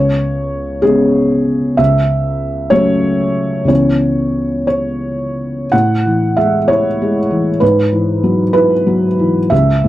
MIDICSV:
0, 0, Header, 1, 2, 480
1, 0, Start_track
1, 0, Key_signature, 4, "minor"
1, 0, Tempo, 626305
1, 1368, Time_signature, 6, 3, 24, 8
1, 2327, Tempo, 666667
1, 4727, Tempo, 621118
1, 6647, Tempo, 645856
1, 7412, End_track
2, 0, Start_track
2, 0, Title_t, "Felt piano"
2, 0, Program_c, 0, 0
2, 0, Note_on_c, 0, 37, 39
2, 0, Note_on_c, 0, 73, 69
2, 57, Control_c, 0, 64, 127
2, 617, Note_off_c, 0, 37, 0
2, 628, Note_on_c, 0, 68, 68
2, 633, Note_off_c, 0, 73, 0
2, 636, Note_on_c, 0, 56, 35
2, 641, Note_on_c, 0, 59, 37
2, 646, Note_on_c, 0, 61, 43
2, 1338, Note_off_c, 0, 56, 0
2, 1341, Note_off_c, 0, 59, 0
2, 1343, Note_off_c, 0, 61, 0
2, 1359, Note_on_c, 0, 76, 75
2, 1365, Note_off_c, 0, 68, 0
2, 1366, Note_on_c, 0, 37, 51
2, 1384, Control_c, 0, 64, 0
2, 1504, Control_c, 0, 64, 127
2, 2061, Note_off_c, 0, 37, 0
2, 2070, Note_on_c, 0, 73, 80
2, 2079, Note_off_c, 0, 76, 0
2, 2080, Note_on_c, 0, 54, 41
2, 2082, Note_on_c, 0, 57, 37
2, 2084, Note_on_c, 0, 61, 39
2, 2766, Note_on_c, 0, 37, 34
2, 2771, Note_off_c, 0, 54, 0
2, 2772, Note_off_c, 0, 57, 0
2, 2773, Note_off_c, 0, 61, 0
2, 2776, Note_on_c, 0, 52, 28
2, 2781, Note_off_c, 0, 73, 0
2, 2783, Note_on_c, 0, 59, 28
2, 2792, Note_on_c, 0, 73, 57
2, 2794, Note_on_c, 0, 61, 31
2, 2815, Control_c, 0, 64, 0
2, 2932, Control_c, 0, 64, 127
2, 3494, Note_off_c, 0, 73, 0
2, 3505, Note_on_c, 0, 73, 60
2, 4215, Note_off_c, 0, 37, 0
2, 4220, Note_off_c, 0, 52, 0
2, 4223, Note_off_c, 0, 59, 0
2, 4228, Note_off_c, 0, 61, 0
2, 4257, Note_off_c, 0, 73, 0
2, 4257, Note_on_c, 0, 78, 72
2, 4267, Note_on_c, 0, 45, 44
2, 4275, Control_c, 0, 64, 0
2, 4410, Control_c, 0, 64, 127
2, 4501, Note_on_c, 0, 52, 37
2, 4725, Note_off_c, 0, 78, 0
2, 4725, Note_on_c, 0, 76, 61
2, 4730, Note_on_c, 0, 56, 37
2, 4875, Note_off_c, 0, 52, 0
2, 4965, Note_on_c, 0, 73, 71
2, 4968, Note_off_c, 0, 76, 0
2, 4978, Note_on_c, 0, 64, 43
2, 5114, Note_off_c, 0, 56, 0
2, 5227, Note_on_c, 0, 56, 39
2, 5356, Note_off_c, 0, 64, 0
2, 5450, Note_on_c, 0, 52, 40
2, 5600, Note_off_c, 0, 56, 0
2, 5658, Note_off_c, 0, 45, 0
2, 5679, Note_on_c, 0, 71, 59
2, 5684, Note_off_c, 0, 73, 0
2, 5688, Note_off_c, 0, 52, 0
2, 5690, Note_on_c, 0, 44, 49
2, 5700, Control_c, 0, 64, 0
2, 5811, Control_c, 0, 64, 127
2, 5928, Note_on_c, 0, 52, 37
2, 6169, Note_on_c, 0, 54, 41
2, 6308, Note_off_c, 0, 52, 0
2, 6386, Note_off_c, 0, 71, 0
2, 6397, Note_on_c, 0, 71, 74
2, 6408, Note_on_c, 0, 64, 48
2, 6551, Note_off_c, 0, 54, 0
2, 6656, Note_on_c, 0, 54, 46
2, 6795, Note_off_c, 0, 64, 0
2, 6897, Note_on_c, 0, 52, 41
2, 7040, Note_off_c, 0, 54, 0
2, 7104, Note_off_c, 0, 44, 0
2, 7126, Note_on_c, 0, 76, 67
2, 7130, Note_off_c, 0, 71, 0
2, 7136, Note_off_c, 0, 52, 0
2, 7138, Note_on_c, 0, 37, 52
2, 7147, Control_c, 0, 64, 0
2, 7263, Control_c, 0, 64, 127
2, 7379, Note_on_c, 0, 44, 41
2, 7412, Note_off_c, 0, 37, 0
2, 7412, Note_off_c, 0, 44, 0
2, 7412, Note_off_c, 0, 76, 0
2, 7412, End_track
0, 0, End_of_file